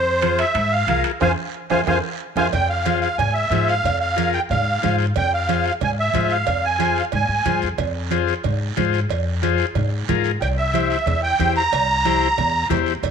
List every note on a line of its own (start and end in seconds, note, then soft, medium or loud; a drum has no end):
0.00 0.42 F2 loud
0.00 0.40 C5 loud
0.22 0.45 F4 medium
0.22 0.46 G#4 medium
0.22 0.46 C5 medium
0.22 high conga medium
0.22 high timbale medium
0.22 short guiro medium
0.38 0.73 E5 loud
0.38 high timbale medium
0.38 short guiro medium
0.54 0.81 G#2 medium
0.54 high conga soft
0.54 high timbale medium
0.54 long guiro medium
0.72 1.02 F5 loud
0.87 1.01 C2 medium
0.87 1.11 F4 medium
0.87 1.12 G#4 medium
0.87 1.12 A#4 medium
0.87 high conga medium
0.87 high timbale medium
0.87 short guiro medium
1.04 high timbale medium
1.04 short guiro medium
1.20 1.33 F2 medium
1.20 1.32 F4 loud
1.20 1.32 G#4 medium
1.20 1.32 C5 medium
1.20 1.32 F5 loud
1.20 1.32 G#5 medium
1.20 high conga loud
1.20 high timbale medium
1.20 long guiro medium
1.70 1.83 F2 medium
1.70 1.81 F4 medium
1.70 1.82 G#4 medium
1.70 1.81 C5 medium
1.70 1.82 C5 medium
1.70 1.81 F5 medium
1.70 1.81 G#5 medium
1.70 high conga medium
1.70 high timbale medium
1.70 long guiro medium
1.86 1.99 F2 medium
1.86 1.98 F4 medium
1.86 1.98 G#4 medium
1.86 1.98 C5 medium
1.86 1.98 F5 medium
1.86 1.98 G#5 medium
1.86 high conga loud
1.86 high timbale medium
1.86 long guiro medium
2.36 2.48 F2 medium
2.36 2.47 F4 medium
2.36 2.47 G#4 medium
2.36 2.47 C5 medium
2.36 2.48 C5 medium
2.36 2.47 F5 medium
2.36 2.48 G#5 medium
2.36 high conga medium
2.36 high timbale loud
2.36 long guiro loud
2.52 3.06 F2 medium
2.52 2.69 G5 loud
2.52 cowbell loud
2.52 high conga soft
2.52 low conga medium
2.52 long guiro medium
2.69 3.00 F5 medium
2.85 3.09 F4 medium
2.85 3.09 G#4 medium
2.85 3.09 C5 medium
2.85 cowbell medium
2.85 high conga medium
2.85 short guiro medium
3.01 3.17 F5 medium
3.01 short guiro medium
3.18 3.45 G#2 medium
3.18 3.34 G#5 loud
3.18 cowbell medium
3.18 high conga soft
3.18 low conga medium
3.18 long guiro medium
3.34 3.68 E5 medium
3.50 3.77 G#2 loud
3.50 3.74 F4 medium
3.50 3.75 G#4 medium
3.50 3.75 C5 medium
3.50 cowbell medium
3.50 high conga medium
3.50 short guiro medium
3.68 3.99 F5 loud
3.68 short guiro medium
3.84 4.37 F2 medium
3.84 cowbell loud
3.84 high conga soft
3.84 low conga medium
3.84 long guiro medium
4.00 4.31 F5 medium
4.16 4.40 F4 medium
4.16 4.40 G#4 medium
4.16 4.40 A#4 medium
4.16 cowbell medium
4.16 high conga medium
4.16 short guiro medium
4.33 4.41 G5 medium
4.33 short guiro medium
4.49 4.76 G#2 medium
4.49 4.96 F5 medium
4.49 cowbell medium
4.49 high conga soft
4.49 low conga medium
4.49 long guiro medium
4.82 5.10 G#2 loud
4.82 5.06 F4 medium
4.82 5.06 G#4 medium
4.82 5.06 C5 medium
4.82 cowbell medium
4.82 high conga medium
4.82 low conga medium
4.82 short guiro medium
4.98 short guiro medium
5.14 5.69 F2 loud
5.14 5.32 G5 loud
5.14 cowbell loud
5.14 high conga soft
5.14 low conga medium
5.14 long guiro medium
5.34 5.65 F5 medium
5.48 5.72 F4 medium
5.48 5.72 G#4 medium
5.48 5.72 C5 medium
5.48 cowbell medium
5.48 high conga medium
5.48 short guiro medium
5.64 5.74 F5 medium
5.64 short guiro medium
5.81 6.08 G#2 medium
5.81 5.91 G#5 medium
5.81 cowbell medium
5.81 high conga soft
5.81 low conga medium
5.81 long guiro medium
6.00 6.33 E5 medium
6.14 6.41 G#2 loud
6.14 6.37 F4 medium
6.14 6.37 G#4 medium
6.14 6.38 C5 medium
6.14 cowbell medium
6.14 high conga medium
6.14 low conga medium
6.14 short guiro medium
6.30 6.65 F5 medium
6.30 short guiro medium
6.46 7.00 F2 medium
6.46 cowbell loud
6.46 high conga soft
6.46 low conga medium
6.46 long guiro medium
6.65 6.98 G#5 medium
6.79 7.02 F4 medium
6.79 7.03 G#4 medium
6.79 7.03 C5 medium
6.79 cowbell medium
6.79 high conga medium
6.79 short guiro medium
6.96 7.05 F5 medium
6.96 short guiro medium
7.12 7.26 G#2 medium
7.12 7.59 G#5 medium
7.12 cowbell medium
7.12 high conga soft
7.12 low conga medium
7.12 long guiro medium
7.29 7.44 G#2 medium
7.45 7.60 G2 medium
7.45 7.69 F4 medium
7.45 7.69 G#4 medium
7.45 7.69 C5 medium
7.45 cowbell medium
7.45 high conga medium
7.45 low conga medium
7.45 short guiro medium
7.61 7.78 F2 medium
7.61 short guiro medium
7.78 8.31 F2 loud
7.78 cowbell loud
7.78 high conga soft
7.78 low conga medium
7.78 long guiro medium
8.11 8.34 F4 medium
8.11 8.34 G#4 medium
8.11 8.34 C5 medium
8.11 cowbell medium
8.11 high conga medium
8.11 short guiro medium
8.27 short guiro medium
8.44 8.71 G#2 medium
8.44 cowbell medium
8.44 high conga soft
8.44 low conga medium
8.44 long guiro medium
8.76 9.03 G#2 loud
8.76 9.00 F4 medium
8.76 9.00 G#4 medium
8.76 9.00 C5 medium
8.76 cowbell medium
8.76 high conga medium
8.76 low conga medium
8.76 short guiro medium
8.93 short guiro medium
9.09 9.62 F2 loud
9.09 cowbell medium
9.09 high conga soft
9.09 long guiro medium
9.42 9.66 F4 medium
9.42 9.66 G#4 medium
9.42 9.66 C5 loud
9.42 cowbell medium
9.42 high conga medium
9.42 short guiro medium
9.58 short guiro medium
9.75 10.02 G#2 medium
9.75 cowbell medium
9.75 high conga soft
9.75 low conga medium
9.75 long guiro medium
10.08 10.35 G#2 loud
10.08 10.32 F4 medium
10.08 10.32 G#4 medium
10.08 10.32 A#4 loud
10.08 cowbell medium
10.08 high conga medium
10.08 low conga medium
10.08 short guiro medium
10.24 short guiro medium
10.41 10.94 C2 loud
10.41 10.48 G5 medium
10.41 cowbell loud
10.41 high conga soft
10.41 long guiro medium
10.58 10.88 E5 medium
10.73 10.97 E4 medium
10.73 10.97 G4 medium
10.73 10.97 C5 medium
10.73 cowbell medium
10.73 high conga medium
10.73 short guiro medium
10.90 11.20 E5 medium
10.90 short guiro medium
11.06 11.33 E2 loud
11.06 cowbell medium
11.06 high conga soft
11.06 low conga medium
11.06 long guiro medium
11.23 11.54 G5 loud
11.38 11.66 E2 loud
11.38 11.63 E4 medium
11.38 11.63 G4 medium
11.38 11.63 C5 medium
11.38 cowbell medium
11.38 high conga medium
11.38 short guiro medium
11.55 12.67 A#5 loud
11.55 short guiro medium
11.72 12.25 C2 loud
11.72 cowbell loud
11.72 high conga soft
11.72 long guiro medium
12.05 12.28 E4 medium
12.05 12.28 G4 medium
12.05 12.28 C5 loud
12.05 cowbell medium
12.05 high conga medium
12.05 short guiro medium
12.21 short guiro medium
12.38 12.64 E2 loud
12.38 cowbell medium
12.38 high conga soft
12.38 low conga medium
12.38 long guiro medium
12.70 12.96 E2 medium
12.70 12.93 E4 medium
12.70 12.93 G4 medium
12.70 12.94 C5 medium
12.70 cowbell medium
12.70 high conga medium
12.70 low conga medium
12.70 low timbale medium
12.70 short guiro medium
12.86 short guiro medium
13.03 13.11 F2 medium
13.03 cowbell loud
13.03 high conga soft
13.03 low conga medium
13.03 long guiro medium